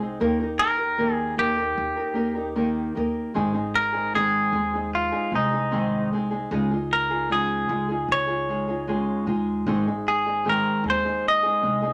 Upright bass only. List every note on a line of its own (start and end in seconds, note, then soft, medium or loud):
0.00 0.16 C2 medium
0.21 1.35 D#2 medium
1.39 1.75 D#2 medium
1.78 2.92 D#2 medium
2.97 3.38 D#2 medium
3.37 4.31 G#1 medium
4.53 5.08 D#2 medium
5.32 6.46 C2 medium
6.51 7.65 C#2 medium
7.69 8.05 C#2 medium
8.08 9.23 C#2 medium
9.27 9.63 D#2 medium
9.66 10.61 G#1 medium
10.84 11.39 D#2 medium
11.63 11.93 C2 medium